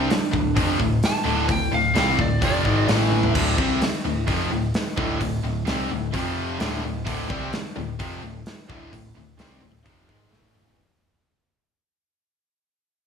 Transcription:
0.00 0.77 D4 medium
0.09 muted overdriven electric guitar stroke medium
0.09 muted picked electric bass stroke soft
0.09 muted distorted electric guitar stroke medium
0.09 snare loud
0.09 open hi-hat medium
0.31 0.55 D1 medium
0.31 0.51 D2 medium
0.31 0.51 A2 medium
0.31 kick medium
0.56 0.78 F1 medium
0.56 0.79 F2 medium
0.56 0.79 C3 medium
0.56 0.79 F3 loud
0.56 kick loud
0.56 open hi-hat medium
0.80 1.01 D1 medium
0.80 0.98 D2 medium
0.80 0.98 A2 medium
0.80 kick medium
1.03 1.49 A5 loud
1.03 snare loud
1.03 open hi-hat medium
1.24 1.47 D1 loud
1.24 1.47 D2 loud
1.24 1.47 A2 loud
1.24 1.48 D3 loud
1.48 1.71 D1 medium
1.48 1.67 D2 medium
1.48 1.67 A2 medium
1.48 1.73 G5 medium
1.48 kick loud
1.48 open hi-hat medium
1.72 1.94 D1 medium
1.72 1.91 D2 medium
1.72 1.91 A2 medium
1.72 1.96 F5 loud
1.94 2.17 C2 loud
1.94 2.17 C3 loud
1.94 2.18 G3 loud
1.94 2.18 C4 loud
1.94 snare loud
1.94 open hi-hat medium
1.99 2.20 F5 medium
2.19 2.40 D1 loud
2.19 2.37 D2 medium
2.19 2.37 A2 medium
2.19 2.42 D5 loud
2.19 kick medium
2.41 2.64 F1 medium
2.41 2.63 F2 medium
2.41 2.64 C3 medium
2.41 2.64 F3 loud
2.41 kick loud
2.41 open hi-hat medium
2.45 2.88 D5 loud
2.64 2.87 G#1 loud
2.64 2.87 G#2 loud
2.64 2.87 D#3 loud
2.64 2.87 G#3 loud
2.64 kick medium
2.87 3.31 A1 loud
2.87 3.33 A2 medium
2.87 3.34 E3 loud
2.87 3.34 A3 medium
2.87 snare loud
2.87 open hi-hat medium
3.12 high tom medium
3.23 floor tom loud
3.35 3.57 D1 loud
3.35 3.57 D2 medium
3.35 3.57 A2 loud
3.35 3.58 D3 loud
3.35 kick loud
3.35 crash loud
3.57 3.80 C2 loud
3.57 3.80 C3 medium
3.57 3.80 G3 loud
3.57 3.81 C4 loud
3.57 kick loud
3.81 muted picked electric bass stroke soft
3.81 muted distorted electric guitar stroke medium
3.81 muted overdriven electric guitar stroke medium
3.81 snare loud
3.81 open hi-hat medium
4.05 4.26 D1 medium
4.05 4.23 D2 medium
4.05 4.23 A2 medium
4.27 4.49 F1 medium
4.27 4.50 F2 medium
4.27 4.50 C3 medium
4.27 4.51 F3 loud
4.27 kick loud
4.27 open hi-hat medium
4.50 4.72 D1 medium
4.50 4.69 D2 medium
4.50 4.70 A2 medium
4.74 snare loud
4.74 open hi-hat medium
4.97 5.19 D1 medium
4.97 5.19 D2 loud
4.97 5.20 A2 loud
4.97 5.20 D3 loud
4.97 kick loud
5.21 5.42 D1 medium
5.21 5.39 D2 medium
5.21 5.39 A2 medium
5.21 kick medium
5.21 open hi-hat medium
5.43 5.65 D1 medium
5.43 5.62 D2 medium
5.43 5.63 A2 medium
5.67 5.88 C2 loud
5.67 5.89 C3 loud
5.67 5.90 G3 loud
5.67 5.90 C4 loud
5.67 snare loud
5.67 open hi-hat medium
5.90 6.12 D1 medium
5.90 6.09 D2 medium
5.90 6.09 A2 medium
6.13 6.56 F1 loud
6.13 6.59 F2 medium
6.13 6.59 C3 loud
6.13 6.59 F3 medium
6.13 kick loud
6.13 open hi-hat medium
6.60 6.81 D1 loud
6.60 6.82 D2 medium
6.60 6.83 A2 loud
6.60 6.83 D3 loud
6.60 snare loud
6.60 open hi-hat medium
6.83 7.05 D1 medium
6.83 7.02 D2 medium
6.83 7.02 A2 medium
7.06 7.28 D1 loud
7.06 7.28 D2 loud
7.06 7.29 A2 loud
7.06 7.29 D3 loud
7.06 kick loud
7.06 open hi-hat medium
7.29 7.51 C2 loud
7.29 7.52 C3 loud
7.29 7.52 G3 loud
7.29 7.52 C4 loud
7.29 kick loud
7.52 muted distorted electric guitar stroke medium
7.52 muted overdriven electric guitar stroke medium
7.52 muted picked electric bass stroke soft
7.52 snare loud
7.52 open hi-hat medium
7.76 7.98 D1 medium
7.76 7.94 D2 medium
7.76 7.94 A2 medium
7.99 8.21 F1 loud
7.99 8.21 F2 medium
7.99 8.22 C3 loud
7.99 8.22 F3 loud
7.99 kick loud
7.99 open hi-hat medium
8.22 8.43 D1 medium
8.22 8.41 D2 medium
8.22 8.41 A2 medium
8.46 snare loud
8.46 open hi-hat medium
8.70 8.91 D1 loud
8.70 8.92 D2 loud
8.70 8.92 A2 loud
8.70 8.92 D3 loud
8.70 kick loud
8.93 9.14 D1 medium
8.93 9.11 D2 medium
8.93 9.11 A2 medium
8.93 kick medium
8.93 open hi-hat medium
9.15 9.37 D1 medium
9.15 9.34 D2 medium
9.15 9.35 A2 medium
9.38 9.60 C2 loud
9.38 9.61 C3 medium
9.38 9.61 G3 loud
9.38 9.62 C4 loud
9.38 snare loud
9.38 open hi-hat medium
9.62 9.83 D1 medium
9.62 9.80 D2 medium
9.62 9.80 A2 medium
9.85 10.07 F1 medium
9.85 10.07 F2 medium
9.85 10.07 C3 medium
9.85 10.08 F3 loud
9.85 kick loud
9.85 open hi-hat medium
10.08 10.30 G#1 medium
10.08 10.31 G#2 medium
10.08 10.32 D#3 medium
10.08 10.32 G#3 loud
10.08 kick loud
10.31 10.74 A1 loud
10.31 10.77 A2 medium
10.31 10.77 E3 medium
10.31 10.77 A3 medium
10.31 snare medium
10.43 high tom medium
10.55 mid tom loud
10.67 floor tom loud

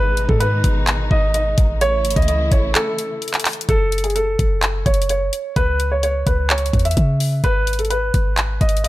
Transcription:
0.00 0.28 G#1 loud
0.00 1.79 B2 medium
0.00 1.79 D#3 medium
0.00 1.78 G#3 medium
0.00 1.79 D#4 medium
0.00 0.27 B4 loud
0.17 closed hi-hat medium
0.29 0.63 G#2 loud
0.29 0.40 A4 medium
0.29 kick loud
0.40 1.07 B4 medium
0.40 closed hi-hat medium
0.64 1.09 G#1 loud
0.64 kick loud
0.64 closed hi-hat medium
0.87 clap loud
0.87 closed hi-hat medium
1.11 1.56 G#1 loud
1.11 1.33 D#5 medium
1.11 kick loud
1.34 1.78 D#5 medium
1.34 closed hi-hat medium
1.58 2.06 A1 loud
1.58 kick loud
1.58 closed hi-hat medium
1.81 3.67 C#3 medium
1.81 3.67 E3 medium
1.81 3.67 A3 medium
1.81 3.67 E4 medium
1.81 2.14 C#5 loud
1.81 closed hi-hat medium
2.05 2.16 G#1 loud
2.05 closed hi-hat medium
2.11 closed hi-hat medium
2.16 2.50 C#2 loud
2.16 2.27 D#5 medium
2.16 kick loud
2.16 closed hi-hat medium
2.22 closed hi-hat soft
2.28 2.50 D#5 medium
2.28 closed hi-hat medium
2.52 2.75 A1 loud
2.52 2.73 C#5 medium
2.52 kick medium
2.52 closed hi-hat medium
2.75 3.65 A4 medium
2.75 clap loud
2.75 closed hi-hat medium
2.98 closed hi-hat medium
3.22 closed hi-hat soft
3.28 closed hi-hat medium
3.34 clap medium
3.34 closed hi-hat medium
3.40 closed hi-hat medium
3.45 clap loud
3.45 closed hi-hat medium
3.45 open hi-hat medium
3.53 closed hi-hat medium
3.61 closed hi-hat medium
3.69 4.36 F#1 loud
3.69 4.02 A4 loud
3.69 kick loud
3.69 closed hi-hat medium
3.92 closed hi-hat medium
3.98 closed hi-hat medium
4.04 4.15 G#4 medium
4.04 closed hi-hat medium
4.10 closed hi-hat soft
4.15 4.82 A4 medium
4.15 closed hi-hat medium
4.39 4.84 F#1 loud
4.39 kick medium
4.39 closed hi-hat medium
4.63 clap loud
4.63 closed hi-hat medium
4.86 5.31 F#1 loud
4.86 5.08 C#5 medium
4.86 kick loud
4.86 closed hi-hat medium
4.94 closed hi-hat medium
5.02 closed hi-hat medium
5.09 5.54 C#5 medium
5.09 closed hi-hat medium
5.33 closed hi-hat medium
5.56 6.24 C#2 loud
5.56 5.89 B4 loud
5.56 kick loud
5.56 closed hi-hat medium
5.80 closed hi-hat medium
5.92 6.02 C#5 medium
6.03 6.25 C#5 medium
6.03 closed hi-hat medium
6.27 6.72 C#2 loud
6.27 6.48 B4 medium
6.27 kick medium
6.27 closed hi-hat medium
6.50 6.83 C#5 medium
6.50 clap loud
6.50 closed hi-hat medium
6.58 closed hi-hat medium
6.66 closed hi-hat medium
6.73 6.96 E2 loud
6.73 kick loud
6.73 closed hi-hat soft
6.79 closed hi-hat medium
6.85 7.40 E5 medium
6.85 closed hi-hat medium
6.91 closed hi-hat medium
6.97 7.42 C#3 loud
6.97 kick loud
6.97 closed hi-hat medium
7.20 open hi-hat medium
7.44 8.11 G#1 loud
7.44 7.77 B4 loud
7.44 kick loud
7.44 closed hi-hat medium
7.67 closed hi-hat medium
7.73 closed hi-hat medium
7.79 7.90 A4 medium
7.79 closed hi-hat medium
7.85 closed hi-hat soft
7.90 8.57 B4 medium
7.90 closed hi-hat medium
8.14 8.59 G#1 loud
8.14 kick medium
8.14 closed hi-hat medium
8.38 clap loud
8.38 closed hi-hat medium
8.61 8.88 G#1 loud
8.61 8.83 D#5 medium
8.61 kick loud
8.61 closed hi-hat medium
8.69 closed hi-hat medium
8.77 closed hi-hat medium
8.84 8.88 D#5 medium
8.84 closed hi-hat medium

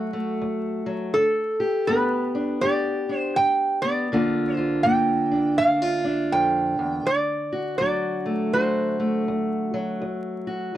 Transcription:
0.00 0.34 D2 medium
0.00 0.85 F#3 medium
0.00 0.12 A3 medium
0.00 1.11 F#4 medium
0.13 1.15 A3 medium
0.41 1.09 D2 medium
0.86 1.14 F#3 medium
1.14 1.83 G2 medium
1.14 1.87 A4 medium
1.60 2.62 G4 medium
1.87 2.56 G2 medium
1.87 3.82 B3 medium
1.87 2.64 B4 medium
2.35 3.09 D4 medium
2.61 3.30 G2 medium
2.61 4.07 G4 medium
2.61 3.18 D5 medium
3.09 4.13 D4 medium
3.18 3.38 C5 medium
3.36 4.05 G2 medium
3.36 3.79 G5 loud
3.82 4.08 B3 medium
3.82 4.55 D5 medium
4.12 4.79 G2 medium
4.12 10.02 D3 medium
4.12 4.83 A#3 medium
4.12 5.31 D4 medium
4.12 4.56 F4 medium
4.55 5.58 F4 medium
4.55 4.87 C5 medium
4.83 5.52 G2 medium
4.83 7.02 A#3 medium
4.83 5.57 G5 medium
5.31 5.59 D4 medium
5.58 6.26 G2 medium
5.58 5.82 D4 medium
5.58 6.07 F5 loud
5.82 7.06 F4 medium
6.04 8.25 D4 medium
6.04 6.28 E5 loud
6.32 6.78 F2 medium
6.32 7.08 G5 medium
6.79 7.05 E2 medium
7.05 7.74 D2 medium
7.05 7.77 D5 medium
7.53 8.55 F#4 medium
7.78 8.48 D2 medium
7.78 9.73 F#3 medium
7.78 8.55 D5 medium
8.26 8.99 A3 medium
8.54 9.22 D2 medium
8.54 9.98 F#4 medium
8.54 9.23 C5 medium
9.00 10.77 A3 medium
9.28 9.96 D2 medium
9.74 10.74 F#3 medium
10.02 10.69 D2 medium
10.47 10.77 F#4 medium

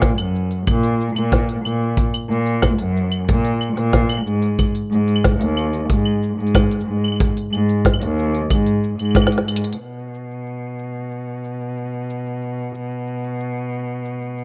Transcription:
0.02 kick medium
0.02 snare medium
0.02 open hi-hat medium
0.02 cabasa soft
0.18 0.58 F#2 medium
0.18 open hi-hat soft
0.18 cabasa soft
0.18 claves medium
0.35 cabasa medium
0.51 open hi-hat soft
0.51 cabasa soft
0.67 1.08 A#2 loud
0.67 kick medium
0.67 open hi-hat medium
0.67 cabasa soft
0.67 claves medium
0.83 open hi-hat soft
1.01 cabasa medium
1.09 cabasa soft
1.16 1.56 A#2 medium
1.16 open hi-hat soft
1.16 claves medium
1.32 kick loud
1.32 snare medium
1.32 open hi-hat medium
1.32 cabasa soft
1.49 open hi-hat soft
1.49 cabasa soft
1.65 2.05 A#2 medium
1.65 cabasa medium
1.65 claves medium
1.83 cabasa soft
1.97 kick loud
1.97 open hi-hat medium
1.97 cabasa soft
2.14 open hi-hat soft
2.14 cabasa soft
2.14 claves medium
2.30 2.70 A#2 loud
2.30 cabasa medium
2.46 open hi-hat soft
2.46 cabasa soft
2.62 kick medium
2.62 snare medium
2.62 open hi-hat medium
2.62 cabasa soft
2.62 claves medium
2.79 3.19 F#2 loud
2.79 open hi-hat soft
2.79 cabasa soft
2.97 cabasa medium
3.12 open hi-hat soft
3.12 cabasa soft
3.12 claves medium
3.29 3.69 A#2 loud
3.29 kick medium
3.29 open hi-hat medium
3.29 cabasa soft
3.45 open hi-hat soft
3.61 cabasa medium
3.61 claves medium
3.77 4.17 A#2 loud
3.77 snare soft
3.77 open hi-hat soft
3.77 cabasa soft
3.93 kick loud
3.93 snare medium
3.93 open hi-hat medium
3.93 cabasa soft
4.09 open hi-hat soft
4.09 cabasa soft
4.09 claves medium
4.12 claves medium
4.20 claves soft
4.24 4.66 G#2 medium
4.24 cabasa medium
4.24 claves soft
4.42 open hi-hat soft
4.42 cabasa soft
4.59 kick medium
4.59 open hi-hat medium
4.59 cabasa soft
4.59 claves medium
4.75 open hi-hat soft
4.75 cabasa soft
4.91 5.31 G#2 loud
4.91 cabasa medium
5.08 open hi-hat soft
5.16 claves medium
5.24 kick loud
5.24 snare medium
5.24 open hi-hat medium
5.24 cabasa soft
5.40 5.80 D#2 medium
5.40 open hi-hat soft
5.40 cabasa soft
5.57 cabasa medium
5.57 claves medium
5.73 open hi-hat soft
5.73 cabasa soft
5.90 6.30 G#2 loud
5.90 kick medium
5.90 open hi-hat medium
5.90 cabasa soft
6.05 claves medium
6.23 cabasa medium
6.38 6.78 G#2 medium
6.38 cabasa soft
6.47 open hi-hat soft
6.55 kick loud
6.55 snare medium
6.55 open hi-hat medium
6.55 cabasa soft
6.55 claves medium
6.72 open hi-hat soft
6.72 cabasa soft
6.80 cabasa medium
6.86 7.27 G#2 medium
7.04 cabasa soft
7.04 claves medium
7.08 claves medium
7.12 claves medium
7.16 claves soft
7.20 kick loud
7.20 open hi-hat medium
7.20 cabasa soft
7.37 open hi-hat soft
7.37 cabasa soft
7.52 7.92 G#2 loud
7.52 cabasa medium
7.52 claves medium
7.69 open hi-hat soft
7.69 cabasa soft
7.85 kick medium
7.85 snare medium
7.85 open hi-hat medium
7.85 cabasa soft
7.94 claves medium
8.01 8.41 D#2 loud
8.01 open hi-hat soft
8.01 cabasa soft
8.19 cabasa medium
8.35 open hi-hat soft
8.35 cabasa soft
8.50 8.90 G#2 loud
8.50 kick loud
8.50 open hi-hat medium
8.50 cabasa soft
8.50 claves medium
8.67 open hi-hat soft
8.67 cabasa soft
8.84 cabasa medium
8.99 9.39 G#2 medium
8.99 open hi-hat soft
8.99 cabasa soft
8.99 claves soft
9.05 claves soft
9.11 claves soft
9.15 kick loud
9.15 snare medium
9.15 open hi-hat medium
9.15 cabasa soft
9.15 claves medium
9.22 claves medium
9.27 snare medium
9.27 claves medium
9.32 open hi-hat soft
9.32 cabasa soft
9.38 snare medium
9.48 9.70 G#2 medium
9.48 closed hi-hat medium
9.48 claves medium
9.56 closed hi-hat medium
9.64 closed hi-hat medium
9.73 closed hi-hat medium
9.81 14.44 B2 medium
9.81 cabasa soft
9.98 cabasa soft
10.14 cabasa medium
10.31 cabasa soft
10.47 cabasa soft
10.63 cabasa soft
10.79 cabasa medium
10.95 cabasa soft
11.11 cabasa soft
11.44 cabasa medium
11.61 cabasa soft
11.77 cabasa soft
11.93 cabasa soft
12.10 cabasa medium
12.26 cabasa soft
12.42 cabasa soft
12.58 cabasa soft
12.63 cabasa soft
12.69 cabasa soft
12.75 cabasa medium
12.91 cabasa soft
13.07 cabasa soft
13.24 cabasa soft
13.40 cabasa medium
13.56 cabasa soft
13.73 cabasa soft
14.05 cabasa medium
14.22 cabasa soft
14.38 cabasa soft

